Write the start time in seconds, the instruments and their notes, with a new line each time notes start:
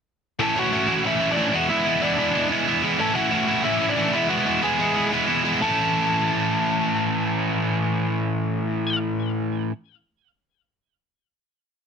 0.39 distorted electric guitar A2 E3 A3 C#4 E4, lead electric guitar A4 A5
0.55 distorted electric guitar A2 E3 A3 C#4 E4, lead electric guitar F#4 F#5
0.72 distorted electric guitar A2 E3 A3 C#4 E4
0.87 distorted electric guitar A2 E3 A3 C#4 E4
1.03 distorted electric guitar A2 E3 A3 C#4 E4, lead electric guitar E4 E5
1.20 distorted electric guitar A2 E3 A3 C#4 E4
1.32 distorted electric guitar A2, lead electric guitar D4 D5
1.36 distorted electric guitar E3 A3 C#4 E4
1.53 distorted electric guitar E3 G#3 B3 E4, lead electric guitar F#4 F#5
1.69 distorted electric guitar E3 G#3 B3 E4, lead electric guitar E4 E5
1.85 distorted electric guitar E3 G#3 B3 E4
2.01 distorted electric guitar E3 G#3 B3 E4, lead electric guitar D4 D5
2.17 distorted electric guitar E3 G#3 B3 E4
2.34 distorted electric guitar E3 G#3 B3 E4
2.51 distorted electric guitar E3 G#3 B3 E4
2.67 distorted electric guitar E3 G#3 B3 E4
2.83 distorted electric guitar E3 G#3 B3 E4
2.99 distorted electric guitar A2 E3 A3 C#4 E4, lead electric guitar A4 A5
3.14 distorted electric guitar A2 E3 A3 C#4 E4, lead electric guitar F#4 F#5
3.31 distorted electric guitar A2 E3 A3 C#4 E4
3.47 distorted electric guitar A2 E3 A3 C#4 E4
3.63 distorted electric guitar A2 E3 A3 C#4 E4, lead electric guitar E4 E5
3.79 distorted electric guitar A2 E3 A3 C#4 E4
3.89 lead electric guitar D4 D5
3.96 distorted electric guitar A2 E3 A3 C#4 E4
4.12 distorted electric guitar E3 G#3 B3 E4, lead electric guitar E4 E5
4.28 distorted electric guitar E3 G#3 B3 E4, lead electric guitar F#4 F#5
4.45 distorted electric guitar E3 G#3 B3 E4
4.62 distorted electric guitar E3 G#3 B3 E4, lead electric guitar G#4 G#5
4.78 distorted electric guitar E3 G#3 B3 E4
4.95 distorted electric guitar E3 G#3 B3 E4
5.11 distorted electric guitar E3 G#3 B3 E4
5.28 distorted electric guitar E3 G#3 B3 E4
5.44 distorted electric guitar E3 G#3 B3 E4
5.60 distorted electric guitar A2 E3 A3 C#4 E4, lead electric guitar A5